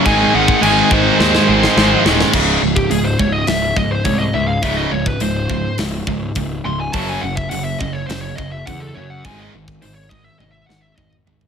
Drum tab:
CC |x---x-----------|x---------------|----------------|----------------|
HH |----------------|----o---o---o---|o---o---o---o---|o---o---o---o---|
SD |--------oo-oo-oo|--------o-------|--------o-------|--------o-------|
T1 |----------------|----------------|----------------|----------------|
T2 |----------------|----------------|----------------|----------------|
FT |----------------|----------------|----------------|----------------|
BD |o--o--o---------|o--o--o---o-o---|o--o--o---o-o---|o--o--o---o-o---|

CC |----------------|
HH |o---o-----------|
SD |----------o-----|
T1 |--------o-------|
T2 |------------oo--|
FT |--------------oo|
BD |o--o--o-----o---|